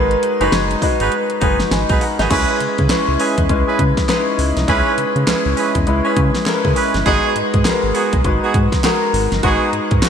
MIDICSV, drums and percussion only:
0, 0, Header, 1, 2, 480
1, 0, Start_track
1, 0, Tempo, 594059
1, 1862, Time_signature, 4, 2, 24, 8
1, 8154, End_track
2, 0, Start_track
2, 0, Title_t, "Drums"
2, 89, Note_on_c, 9, 42, 46
2, 169, Note_off_c, 9, 42, 0
2, 184, Note_on_c, 9, 42, 74
2, 265, Note_off_c, 9, 42, 0
2, 330, Note_on_c, 9, 42, 55
2, 411, Note_off_c, 9, 42, 0
2, 422, Note_on_c, 9, 38, 110
2, 425, Note_on_c, 9, 42, 65
2, 503, Note_off_c, 9, 38, 0
2, 505, Note_off_c, 9, 42, 0
2, 572, Note_on_c, 9, 42, 60
2, 653, Note_off_c, 9, 42, 0
2, 662, Note_on_c, 9, 36, 90
2, 664, Note_on_c, 9, 46, 75
2, 742, Note_off_c, 9, 36, 0
2, 745, Note_off_c, 9, 46, 0
2, 809, Note_on_c, 9, 42, 67
2, 890, Note_off_c, 9, 42, 0
2, 903, Note_on_c, 9, 42, 63
2, 984, Note_off_c, 9, 42, 0
2, 1049, Note_on_c, 9, 42, 51
2, 1129, Note_off_c, 9, 42, 0
2, 1143, Note_on_c, 9, 36, 91
2, 1143, Note_on_c, 9, 42, 74
2, 1224, Note_off_c, 9, 36, 0
2, 1224, Note_off_c, 9, 42, 0
2, 1290, Note_on_c, 9, 38, 66
2, 1293, Note_on_c, 9, 42, 49
2, 1370, Note_off_c, 9, 38, 0
2, 1374, Note_off_c, 9, 42, 0
2, 1385, Note_on_c, 9, 38, 98
2, 1385, Note_on_c, 9, 42, 68
2, 1466, Note_off_c, 9, 38, 0
2, 1466, Note_off_c, 9, 42, 0
2, 1529, Note_on_c, 9, 42, 52
2, 1532, Note_on_c, 9, 36, 107
2, 1610, Note_off_c, 9, 42, 0
2, 1613, Note_off_c, 9, 36, 0
2, 1626, Note_on_c, 9, 46, 76
2, 1707, Note_off_c, 9, 46, 0
2, 1772, Note_on_c, 9, 38, 64
2, 1772, Note_on_c, 9, 42, 52
2, 1853, Note_off_c, 9, 38, 0
2, 1853, Note_off_c, 9, 42, 0
2, 1862, Note_on_c, 9, 49, 94
2, 1863, Note_on_c, 9, 36, 103
2, 1863, Note_on_c, 9, 42, 72
2, 1943, Note_off_c, 9, 42, 0
2, 1943, Note_off_c, 9, 49, 0
2, 1944, Note_off_c, 9, 36, 0
2, 2104, Note_on_c, 9, 42, 74
2, 2185, Note_off_c, 9, 42, 0
2, 2249, Note_on_c, 9, 42, 53
2, 2251, Note_on_c, 9, 36, 90
2, 2329, Note_off_c, 9, 42, 0
2, 2332, Note_off_c, 9, 36, 0
2, 2339, Note_on_c, 9, 38, 122
2, 2342, Note_on_c, 9, 42, 70
2, 2344, Note_on_c, 9, 39, 87
2, 2420, Note_off_c, 9, 38, 0
2, 2422, Note_off_c, 9, 42, 0
2, 2425, Note_off_c, 9, 39, 0
2, 2582, Note_on_c, 9, 46, 81
2, 2663, Note_off_c, 9, 46, 0
2, 2729, Note_on_c, 9, 36, 84
2, 2729, Note_on_c, 9, 42, 69
2, 2809, Note_off_c, 9, 36, 0
2, 2809, Note_off_c, 9, 42, 0
2, 2823, Note_on_c, 9, 36, 92
2, 2823, Note_on_c, 9, 42, 66
2, 2903, Note_off_c, 9, 42, 0
2, 2904, Note_off_c, 9, 36, 0
2, 3063, Note_on_c, 9, 36, 93
2, 3064, Note_on_c, 9, 42, 73
2, 3144, Note_off_c, 9, 36, 0
2, 3144, Note_off_c, 9, 42, 0
2, 3209, Note_on_c, 9, 38, 71
2, 3211, Note_on_c, 9, 36, 91
2, 3213, Note_on_c, 9, 42, 50
2, 3290, Note_off_c, 9, 38, 0
2, 3291, Note_off_c, 9, 36, 0
2, 3294, Note_off_c, 9, 42, 0
2, 3303, Note_on_c, 9, 39, 71
2, 3304, Note_on_c, 9, 38, 90
2, 3304, Note_on_c, 9, 42, 66
2, 3383, Note_off_c, 9, 39, 0
2, 3384, Note_off_c, 9, 38, 0
2, 3385, Note_off_c, 9, 42, 0
2, 3546, Note_on_c, 9, 46, 80
2, 3626, Note_off_c, 9, 46, 0
2, 3690, Note_on_c, 9, 38, 65
2, 3690, Note_on_c, 9, 42, 57
2, 3771, Note_off_c, 9, 38, 0
2, 3771, Note_off_c, 9, 42, 0
2, 3782, Note_on_c, 9, 36, 107
2, 3782, Note_on_c, 9, 42, 72
2, 3863, Note_off_c, 9, 36, 0
2, 3863, Note_off_c, 9, 42, 0
2, 4023, Note_on_c, 9, 42, 76
2, 4104, Note_off_c, 9, 42, 0
2, 4169, Note_on_c, 9, 42, 51
2, 4250, Note_off_c, 9, 42, 0
2, 4260, Note_on_c, 9, 38, 111
2, 4262, Note_on_c, 9, 42, 65
2, 4263, Note_on_c, 9, 39, 86
2, 4341, Note_off_c, 9, 38, 0
2, 4343, Note_off_c, 9, 42, 0
2, 4344, Note_off_c, 9, 39, 0
2, 4502, Note_on_c, 9, 46, 78
2, 4583, Note_off_c, 9, 46, 0
2, 4646, Note_on_c, 9, 42, 71
2, 4648, Note_on_c, 9, 36, 87
2, 4727, Note_off_c, 9, 42, 0
2, 4728, Note_off_c, 9, 36, 0
2, 4741, Note_on_c, 9, 42, 68
2, 4822, Note_off_c, 9, 42, 0
2, 4981, Note_on_c, 9, 42, 73
2, 4982, Note_on_c, 9, 36, 99
2, 5062, Note_off_c, 9, 42, 0
2, 5063, Note_off_c, 9, 36, 0
2, 5127, Note_on_c, 9, 38, 71
2, 5130, Note_on_c, 9, 42, 46
2, 5207, Note_off_c, 9, 38, 0
2, 5211, Note_off_c, 9, 42, 0
2, 5220, Note_on_c, 9, 39, 74
2, 5223, Note_on_c, 9, 38, 94
2, 5223, Note_on_c, 9, 42, 70
2, 5301, Note_off_c, 9, 39, 0
2, 5304, Note_off_c, 9, 38, 0
2, 5304, Note_off_c, 9, 42, 0
2, 5371, Note_on_c, 9, 36, 95
2, 5451, Note_off_c, 9, 36, 0
2, 5464, Note_on_c, 9, 46, 74
2, 5545, Note_off_c, 9, 46, 0
2, 5610, Note_on_c, 9, 38, 71
2, 5610, Note_on_c, 9, 42, 50
2, 5691, Note_off_c, 9, 38, 0
2, 5691, Note_off_c, 9, 42, 0
2, 5703, Note_on_c, 9, 36, 104
2, 5703, Note_on_c, 9, 42, 72
2, 5784, Note_off_c, 9, 36, 0
2, 5784, Note_off_c, 9, 42, 0
2, 5945, Note_on_c, 9, 42, 73
2, 6026, Note_off_c, 9, 42, 0
2, 6090, Note_on_c, 9, 42, 58
2, 6092, Note_on_c, 9, 36, 94
2, 6170, Note_off_c, 9, 42, 0
2, 6172, Note_off_c, 9, 36, 0
2, 6181, Note_on_c, 9, 38, 116
2, 6181, Note_on_c, 9, 39, 82
2, 6184, Note_on_c, 9, 42, 73
2, 6262, Note_off_c, 9, 38, 0
2, 6262, Note_off_c, 9, 39, 0
2, 6265, Note_off_c, 9, 42, 0
2, 6422, Note_on_c, 9, 46, 79
2, 6502, Note_off_c, 9, 46, 0
2, 6567, Note_on_c, 9, 42, 69
2, 6568, Note_on_c, 9, 36, 92
2, 6648, Note_off_c, 9, 42, 0
2, 6649, Note_off_c, 9, 36, 0
2, 6661, Note_on_c, 9, 42, 63
2, 6663, Note_on_c, 9, 36, 88
2, 6742, Note_off_c, 9, 42, 0
2, 6744, Note_off_c, 9, 36, 0
2, 6902, Note_on_c, 9, 42, 70
2, 6903, Note_on_c, 9, 36, 99
2, 6983, Note_off_c, 9, 36, 0
2, 6983, Note_off_c, 9, 42, 0
2, 7048, Note_on_c, 9, 38, 64
2, 7050, Note_on_c, 9, 36, 90
2, 7051, Note_on_c, 9, 42, 50
2, 7128, Note_off_c, 9, 38, 0
2, 7131, Note_off_c, 9, 36, 0
2, 7132, Note_off_c, 9, 42, 0
2, 7142, Note_on_c, 9, 38, 102
2, 7142, Note_on_c, 9, 39, 82
2, 7143, Note_on_c, 9, 42, 67
2, 7222, Note_off_c, 9, 39, 0
2, 7223, Note_off_c, 9, 38, 0
2, 7223, Note_off_c, 9, 42, 0
2, 7386, Note_on_c, 9, 46, 77
2, 7467, Note_off_c, 9, 46, 0
2, 7530, Note_on_c, 9, 38, 64
2, 7530, Note_on_c, 9, 42, 57
2, 7611, Note_off_c, 9, 38, 0
2, 7611, Note_off_c, 9, 42, 0
2, 7620, Note_on_c, 9, 42, 73
2, 7622, Note_on_c, 9, 36, 104
2, 7701, Note_off_c, 9, 42, 0
2, 7703, Note_off_c, 9, 36, 0
2, 7862, Note_on_c, 9, 42, 75
2, 7943, Note_off_c, 9, 42, 0
2, 8007, Note_on_c, 9, 42, 55
2, 8010, Note_on_c, 9, 36, 93
2, 8088, Note_off_c, 9, 42, 0
2, 8090, Note_off_c, 9, 36, 0
2, 8098, Note_on_c, 9, 38, 123
2, 8100, Note_on_c, 9, 42, 72
2, 8104, Note_on_c, 9, 39, 86
2, 8154, Note_off_c, 9, 38, 0
2, 8154, Note_off_c, 9, 39, 0
2, 8154, Note_off_c, 9, 42, 0
2, 8154, End_track
0, 0, End_of_file